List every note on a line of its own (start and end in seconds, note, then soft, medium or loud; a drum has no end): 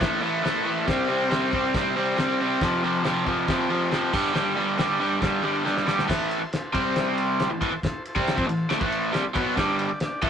0.00 0.20 A2 medium
0.00 0.21 E3 medium
0.00 0.21 A3 loud
0.00 0.20 E4 loud
0.00 0.20 A4 loud
0.00 0.20 C5 loud
0.00 kick loud
0.00 snare loud
0.00 crash medium
0.21 0.42 A2 loud
0.21 0.43 E3 loud
0.21 0.43 A3 loud
0.21 0.42 E4 medium
0.21 0.41 A4 medium
0.21 0.42 C5 loud
0.43 0.63 A2 medium
0.43 0.65 E3 medium
0.43 0.65 A3 loud
0.43 0.64 E4 medium
0.43 0.64 C5 medium
0.43 snare loud
0.43 crash medium
0.47 0.64 A4 medium
0.64 0.85 A2 medium
0.64 0.86 E3 medium
0.64 0.86 A3 medium
0.64 0.85 E4 medium
0.64 0.85 A4 medium
0.64 0.86 C5 loud
0.87 1.07 C3 loud
0.87 1.08 G3 loud
0.87 1.09 C4 loud
0.87 1.06 E4 loud
0.87 1.07 G4 loud
0.87 1.07 C5 loud
0.87 kick loud
0.87 snare loud
0.87 crash medium
1.08 1.28 C3 loud
1.08 1.29 G3 medium
1.08 1.30 C4 loud
1.08 1.29 E4 medium
1.08 1.29 G4 medium
1.08 1.29 C5 medium
1.29 1.50 C3 medium
1.29 1.52 G3 loud
1.29 1.53 C4 loud
1.29 1.50 E4 medium
1.29 1.50 G4 medium
1.29 1.51 C5 loud
1.29 snare loud
1.29 crash medium
1.51 1.73 C3 medium
1.51 1.73 G3 medium
1.51 1.74 C4 loud
1.51 1.72 E4 medium
1.51 1.72 G4 medium
1.51 1.73 C5 loud
1.51 kick medium
1.74 1.95 C3 medium
1.74 1.96 G3 medium
1.74 1.96 C4 loud
1.74 1.94 E4 loud
1.74 1.94 G4 loud
1.74 1.94 C5 loud
1.74 kick loud
1.74 snare loud
1.74 crash medium
1.96 2.16 C3 loud
1.96 2.17 G3 loud
1.96 2.18 C4 loud
1.96 2.16 E4 medium
1.96 2.16 G4 medium
1.96 2.16 C5 medium
2.17 2.39 C3 medium
2.17 2.39 G3 medium
2.17 2.40 C4 loud
2.17 2.37 E4 medium
2.17 2.37 G4 medium
2.17 2.38 C5 loud
2.17 snare loud
2.17 crash medium
2.38 2.60 C3 medium
2.38 2.60 G3 medium
2.38 2.61 C4 medium
2.38 2.58 E4 medium
2.38 2.59 G4 medium
2.38 2.59 C5 loud
2.61 2.82 F2 medium
2.61 2.83 C3 loud
2.61 2.84 F3 loud
2.61 2.80 F4 loud
2.61 2.80 A4 loud
2.61 2.81 C5 loud
2.61 kick loud
2.61 snare loud
2.61 crash medium
2.83 3.03 F2 loud
2.83 3.04 C3 loud
2.83 3.04 F3 medium
2.83 3.02 F4 medium
2.83 3.02 A4 medium
2.83 3.02 C5 loud
3.04 3.25 F2 loud
3.04 3.26 C3 loud
3.04 3.26 F3 loud
3.04 3.23 F4 medium
3.04 3.24 A4 medium
3.04 3.24 C5 loud
3.04 snare loud
3.04 crash medium
3.26 3.46 F2 medium
3.26 3.47 C3 medium
3.26 3.48 F3 medium
3.26 3.45 F4 medium
3.26 3.45 A4 medium
3.26 3.46 C5 loud
3.26 kick medium
3.47 3.68 F2 medium
3.47 3.69 C3 medium
3.47 3.69 F3 loud
3.47 3.67 F4 loud
3.47 3.67 A4 loud
3.47 3.68 C5 loud
3.47 kick loud
3.47 snare loud
3.47 crash medium
3.68 3.90 F2 loud
3.68 3.90 C3 loud
3.68 3.91 F3 loud
3.68 3.88 F4 medium
3.68 3.88 A4 medium
3.68 3.89 C5 loud
3.91 4.12 F2 medium
3.91 4.12 C3 medium
3.91 4.13 F3 loud
3.91 4.12 F4 medium
3.91 4.11 A4 medium
3.91 4.12 C5 loud
3.91 snare loud
3.91 crash medium
4.12 4.32 G2 medium
4.12 4.33 D3 medium
4.12 4.33 G3 medium
4.12 4.52 G4 loud
4.12 4.52 B4 medium
4.12 4.52 D5 loud
4.12 kick loud
4.12 crash loud
4.33 4.54 G2 loud
4.33 4.55 D3 loud
4.33 4.55 G3 loud
4.33 snare loud
4.33 crash medium
4.55 4.76 G2 medium
4.55 4.77 D3 medium
4.55 4.78 G3 loud
4.55 4.76 G4 medium
4.55 4.76 B4 medium
4.55 4.76 D5 medium
4.77 4.98 G2 medium
4.77 4.98 D3 loud
4.77 4.99 G3 loud
4.77 4.98 G4 medium
4.77 4.98 B4 medium
4.77 4.98 D5 loud
4.77 snare loud
4.77 crash medium
4.99 5.19 G2 medium
4.99 5.20 D3 medium
4.99 5.21 G3 loud
4.99 5.20 G4 medium
4.99 5.20 B4 medium
4.99 5.20 D5 loud
5.20 5.41 G2 medium
5.20 5.42 D3 loud
5.20 5.43 G3 loud
5.20 5.41 G4 loud
5.20 5.41 B4 loud
5.20 5.42 D5 loud
5.20 kick loud
5.20 snare loud
5.20 crash medium
5.43 5.63 G2 loud
5.43 5.64 D3 loud
5.43 5.64 G3 loud
5.43 5.63 G4 medium
5.43 5.63 B4 medium
5.43 5.64 D5 medium
5.43 5.64 F5 medium
5.64 5.85 G2 medium
5.64 5.85 D3 medium
5.64 5.87 G3 medium
5.64 5.84 G4 medium
5.64 5.85 B4 medium
5.64 5.85 D5 medium
5.64 5.86 G5 medium
5.64 snare medium
5.77 snare medium
5.86 6.07 G2 medium
5.86 6.07 D3 medium
5.86 6.08 G3 medium
5.86 6.06 G4 medium
5.86 6.06 B4 medium
5.86 6.06 D5 loud
5.86 6.07 A5 medium
5.86 snare loud
5.99 snare medium
6.07 6.40 A2 medium
6.07 6.41 E3 loud
6.07 6.41 A3 medium
6.07 6.28 E4 loud
6.07 6.28 A4 loud
6.07 6.28 C5 loud
6.07 kick loud
6.07 snare loud
6.07 crash loud
6.30 6.49 E4 medium
6.30 6.50 A4 medium
6.30 6.50 C5 medium
6.30 ride medium
6.41 muted overdriven electric guitar stroke medium
6.51 6.71 E4 medium
6.51 6.71 A4 medium
6.51 6.72 C5 medium
6.51 snare loud
6.51 ride loud
6.73 7.49 C3 medium
6.73 7.49 G3 loud
6.73 7.12 C4 medium
6.73 7.50 C4 loud
6.73 7.12 G4 medium
6.73 7.12 C5 loud
6.73 kick loud
6.73 ride medium
6.96 snare loud
6.96 ride loud
7.18 7.37 C4 medium
7.18 7.37 G4 medium
7.18 7.38 B4 medium
7.18 ride medium
7.39 7.51 C4 medium
7.39 7.51 G4 medium
7.39 7.51 C5 loud
7.39 snare loud
7.39 ride medium
7.50 7.59 A2 medium
7.50 7.60 E3 medium
7.50 7.80 E4 medium
7.50 7.80 A4 medium
7.50 7.80 C5 loud
7.61 7.71 A2 medium
7.61 7.72 E3 medium
7.61 kick loud
7.61 ride medium
7.72 muted overdriven electric guitar stroke medium
7.83 8.03 E4 loud
7.83 8.03 A4 loud
7.83 8.03 C5 loud
7.83 kick loud
7.83 snare loud
7.83 ride medium
8.05 8.25 E4 medium
8.05 8.26 A4 medium
8.05 8.26 C5 loud
8.05 ride medium
8.15 8.36 C3 loud
8.15 8.37 G3 medium
8.15 8.37 C4 loud
8.15 kick loud
8.27 8.47 E4 medium
8.27 8.47 A4 medium
8.27 8.47 C5 medium
8.27 snare loud
8.27 ride loud
8.37 8.46 F3 medium
8.37 8.47 C4 loud
8.37 kick loud
8.47 8.65 A2 medium
8.47 8.65 E3 medium
8.47 8.69 E4 medium
8.47 ride medium
8.51 8.69 A4 medium
8.51 8.69 C5 loud
8.69 8.79 D3 medium
8.69 8.80 A3 loud
8.69 8.91 E4 loud
8.69 snare loud
8.69 ride loud
8.73 8.91 A4 loud
8.73 8.91 C5 loud
8.80 9.12 A2 medium
8.80 9.13 E3 medium
8.80 9.13 A3 medium
8.80 kick loud
8.92 9.13 E4 medium
8.92 9.13 A4 medium
8.92 9.13 C5 medium
8.92 ride medium
9.12 9.24 C3 loud
9.12 9.24 G3 loud
9.12 9.34 E4 medium
9.12 9.34 A4 medium
9.12 9.34 C5 loud
9.12 snare loud
9.12 ride medium
9.34 9.56 B2 medium
9.34 9.57 F#3 medium
9.34 9.57 B3 medium
9.34 9.55 E4 medium
9.34 9.56 A4 medium
9.34 9.56 C5 medium
9.34 kick loud
9.34 ride medium
9.57 9.89 G2 medium
9.57 9.89 D3 loud
9.57 9.90 G3 loud
9.57 9.77 D4 loud
9.57 9.77 G4 loud
9.57 9.78 D5 loud
9.57 kick loud
9.57 snare loud
9.57 ride medium
9.79 9.99 D4 medium
9.79 9.99 G4 medium
9.79 9.99 D5 medium
9.79 ride medium
9.90 muted overdriven electric guitar stroke medium
10.00 10.21 D4 medium
10.00 snare loud
10.00 ride loud
10.05 10.22 G4 medium
10.05 10.22 D5 loud
10.22 10.30 A2 loud
10.22 10.30 E3 loud
10.22 10.30 A3 loud
10.22 kick loud
10.22 ride medium
10.26 10.30 E4 medium